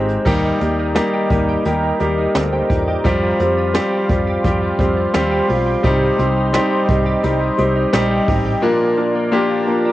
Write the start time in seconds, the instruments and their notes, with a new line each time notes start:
Already playing: fretless electric bass G#1, clean electric guitar D#3 G#3 C4 G4, grand piano G#3 C4 D#4 F4 G4
0.09 closed hi-hat
0.25 fretless electric bass D#2, grand piano D#3 G3 A#3 D#4 G4, clean electric guitar A#3 G4, analog synth pad G4 D#5 A#5, kick, crash
0.43 clean electric guitar D#4
0.60 fretless electric bass D#2, grand piano G3 A#3 D#4 G4, clean electric guitar A#3, closed hi-hat
0.79 clean electric guitar D#4
0.95 grand piano G3 A#3 D#4 G4, clean electric guitar A#3, snare, closed hi-hat
1.13 clean electric guitar G4
1.30 fretless electric bass D#2, grand piano G3 A#3 D#4 G4, clean electric guitar D#4, kick, closed hi-hat
1.49 clean electric guitar G4
1.65 fretless electric bass D#2, grand piano G3 A#3 D#4 G4, clean electric guitar A#3 G4, closed hi-hat
1.83 clean electric guitar D#4
2.00 fretless electric bass D#2, grand piano G3 A#3 D#4 G4, clean electric guitar A#3, closed hi-hat
2.18 clean electric guitar D#4
2.35 fretless electric bass D2, clean electric guitar A#3, grand piano C4 A4, snare, closed hi-hat
2.52 grand piano D#4 C5, clean electric guitar G4
2.70 fretless electric bass E2, clean electric guitar D#4, grand piano F4 D5, kick, closed hi-hat
2.88 clean electric guitar G4, grand piano G4 D#5
3.04 fretless electric bass F2, clean electric guitar F3 G4, grand piano G3 C4 F4 G4, analog synth pad F5 C6, kick, closed hi-hat
3.23 clean electric guitar F4
3.39 fretless electric bass F2, grand piano G3 C4 F4 G4, clean electric guitar C4, closed hi-hat
3.57 clean electric guitar F4
3.74 grand piano G3 C4 F4 G4, clean electric guitar C4, snare, closed hi-hat
3.92 clean electric guitar G4
4.09 fretless electric bass F2, grand piano G3 C4 F4 G4, clean electric guitar F4, kick, closed hi-hat
4.27 clean electric guitar G4
4.44 fretless electric bass F2, clean electric guitar F3 G4, grand piano G3 C4 F4 G4, kick, closed hi-hat
4.62 clean electric guitar F4
4.79 fretless electric bass F2, grand piano G3 C4 F4 G4, clean electric guitar C4, kick, closed hi-hat
4.97 clean electric guitar F4
5.14 fretless electric bass D#2, grand piano G3 C4 F4 G4, clean electric guitar C4, snare, closed hi-hat
5.31 clean electric guitar G4
5.48 fretless electric bass B1, grand piano G3 C4 F4 G4, clean electric guitar F4, open hi-hat
5.66 clean electric guitar G4
5.83 fretless electric bass C2, grand piano C3 G3 C4 D#4 G4, clean electric guitar G3 G4, analog synth pad D#5, kick, closed hi-hat
6.01 clean electric guitar D#4
6.18 fretless electric bass C2, grand piano G3 C4 D#4 G4, clean electric guitar C4, closed hi-hat
6.36 clean electric guitar D#4
6.53 grand piano G3 C4 D#4 G4, clean electric guitar C4, snare, closed hi-hat
6.71 clean electric guitar G4
6.88 fretless electric bass C2, grand piano G3 C4 D#4 G4, clean electric guitar D#4, kick, closed hi-hat
7.06 clean electric guitar G4
7.23 fretless electric bass C2, clean electric guitar G3 G4, grand piano G3 C4 D#4 G4, closed hi-hat
7.41 clean electric guitar D#4
7.58 fretless electric bass C2, grand piano G3 C4 D#4 G4, clean electric guitar C4, closed hi-hat
7.76 clean electric guitar D#4
7.93 fretless electric bass A#1, grand piano G3 C4 D#4 G4, clean electric guitar C4, snare, closed hi-hat
8.11 clean electric guitar G4
8.27 fretless electric bass A1, grand piano G3 C4 D#4 G4, clean electric guitar D#4, kick, open hi-hat
8.46 clean electric guitar G4
8.62 grand piano A#2 A#3 D4 F4 A#4, clean electric guitar F3 D4, analog synth pad F4 D5 A#5
8.81 clean electric guitar A#3
8.97 clean electric guitar F3, grand piano A#3 D4 F4 A#4
9.15 clean electric guitar A#3
9.32 clean electric guitar F3, grand piano A#3 D4 F4 G4
9.50 clean electric guitar D4
9.67 grand piano A#3 D4 F4 A#4, clean electric guitar A#3
9.85 clean electric guitar D4